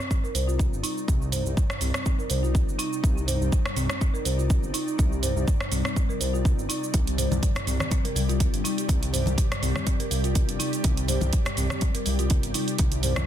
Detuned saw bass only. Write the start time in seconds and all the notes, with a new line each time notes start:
0.35 C2
0.72 G1
1.08 C2
1.46 C2
1.81 C2
2.30 C2
2.68 G1
3.04 C2
3.41 C2
3.76 C2
4.25 C2
4.63 G1
4.99 C2
5.36 C2
5.72 C2
6.21 C2
6.58 G1
6.94 C2
7.31 C2
7.67 C2
8.15 C2
8.53 G1
8.89 C2
9.27 C2
9.62 C2
10.11 C2
10.49 G1
10.84 C2
11.22 C2
11.58 C2
12.06 C2
12.44 G1
12.79 C2
13.17 C2